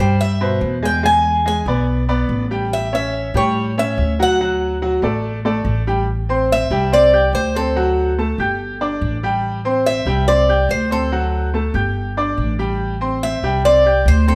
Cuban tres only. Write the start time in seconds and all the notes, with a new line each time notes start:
0.00 C5
0.21 E5
0.85 G5
1.06 G#5
1.48 G#5
2.73 E5
2.95 E5
3.37 C#5
3.79 E5
4.23 F#5
6.52 E5
6.93 D5
7.35 C5
7.56 A4
9.86 E5
10.28 D5
10.71 C5
10.92 A4
13.23 E5
13.65 D5
14.08 C5
14.28 A4